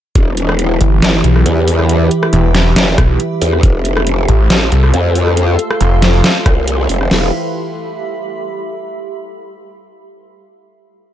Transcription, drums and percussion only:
0.15 kick, closed hi-hat
0.37 closed hi-hat
0.49 cross-stick
0.59 closed hi-hat
0.81 closed hi-hat
1.02 snare, closed hi-hat
1.24 closed hi-hat
1.36 cross-stick
1.46 closed hi-hat
1.68 open hi-hat
1.79 cross-stick
1.89 closed hi-hat
2.11 closed hi-hat
2.23 cross-stick
2.33 closed hi-hat
2.55 snare, closed hi-hat
2.76 snare, closed hi-hat
2.98 kick, cross-stick, closed hi-hat
3.20 closed hi-hat
3.42 open hi-hat
3.53 cross-stick
3.63 kick, closed hi-hat
3.85 closed hi-hat
3.97 cross-stick
4.07 closed hi-hat
4.28 closed hi-hat
4.50 snare, closed hi-hat
4.72 closed hi-hat
4.84 cross-stick
4.94 closed hi-hat
5.15 open hi-hat
5.27 cross-stick
5.37 closed hi-hat
5.59 closed hi-hat
5.71 cross-stick
5.81 closed hi-hat
6.02 snare, closed hi-hat
6.24 snare, closed hi-hat
6.46 kick, cross-stick, closed hi-hat
6.68 closed hi-hat
6.89 open hi-hat
7.01 cross-stick
7.11 snare, crash

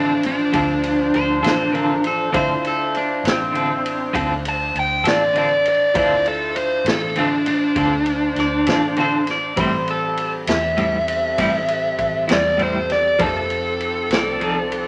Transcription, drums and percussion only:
0.23 ride
0.53 kick, ride
0.83 ride
1.14 ride
1.44 snare, ride
1.75 ride
2.04 ride
2.34 kick, ride
2.65 ride
2.95 ride
3.25 snare, ride
3.55 ride
3.86 ride
4.15 kick, ride
4.45 ride
4.76 ride
5.05 snare, ride
5.36 ride
5.65 ride
5.95 kick, ride
6.26 ride
6.56 ride
6.86 snare, ride
7.16 ride
7.46 ride
7.76 kick, ride
8.06 ride
8.36 snare, ride
8.67 snare, ride
8.97 ride
9.27 snare, ride
9.57 kick, ride
9.88 ride
10.17 ride
10.47 snare, ride
10.78 ride
11.08 ride
11.38 kick, ride
11.68 ride
11.99 kick, ride
12.29 snare, ride
12.59 ride
12.90 snare, ride
13.19 kick, ride
13.50 ride
13.80 ride
14.11 snare, ride
14.41 ride
14.72 ride

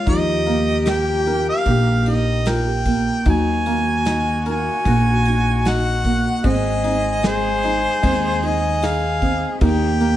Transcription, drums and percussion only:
0.07 kick, ride
0.46 ride
0.85 snare, ride
1.26 ride
1.66 kick, ride
2.06 ride
2.45 snare, ride
2.85 kick, ride
3.25 kick, ride
3.66 ride
4.05 snare, ride
4.45 ride
4.85 kick, ride
5.25 ride
5.65 snare, ride
6.05 kick, ride
6.44 kick, ride
6.84 ride
7.23 snare, ride
7.63 ride
8.03 kick, ride
8.43 ride
8.82 snare, ride
9.22 kick, ride
9.61 kick, ride
10.00 ride

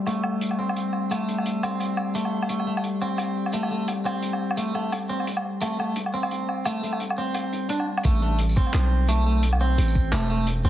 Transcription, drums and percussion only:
0.06 closed hi-hat, low woodblock
0.24 low woodblock
0.41 closed hi-hat
0.51 low woodblock
0.69 low woodblock
0.76 closed hi-hat
0.93 low woodblock
1.11 closed hi-hat, low woodblock
1.28 closed hi-hat
1.38 low woodblock
1.46 closed hi-hat
1.63 closed hi-hat, low woodblock
1.80 closed hi-hat, low woodblock
1.97 low woodblock
2.15 closed hi-hat
2.25 low woodblock
2.43 low woodblock
2.49 closed hi-hat
2.60 low woodblock
2.77 low woodblock
2.84 closed hi-hat
3.01 low woodblock
3.18 closed hi-hat, low woodblock
3.46 low woodblock
3.53 closed hi-hat
3.63 low woodblock
3.88 closed hi-hat, low woodblock
4.06 low woodblock
4.23 closed hi-hat
4.33 low woodblock
4.51 low woodblock
4.57 closed hi-hat
4.75 low woodblock
4.92 closed hi-hat, low woodblock
5.20 low woodblock
5.27 closed hi-hat
5.37 low woodblock
5.61 closed hi-hat, low woodblock
5.80 low woodblock
5.96 closed hi-hat
6.06 low woodblock
6.23 low woodblock
6.31 closed hi-hat
6.49 low woodblock
6.65 closed hi-hat, low woodblock
6.83 closed hi-hat
6.93 low woodblock
7.00 closed hi-hat
7.10 low woodblock
7.34 closed hi-hat, low woodblock
7.53 closed hi-hat
7.69 closed hi-hat
7.80 low woodblock
7.97 low woodblock
8.03 kick, closed hi-hat
8.39 closed hi-hat
8.49 tambourine
8.57 kick
8.67 low woodblock
8.74 clap, closed hi-hat
9.09 closed hi-hat
9.43 closed hi-hat
9.53 low woodblock
9.78 closed hi-hat
9.88 tambourine
9.95 kick
10.13 clap, closed hi-hat
10.47 closed hi-hat

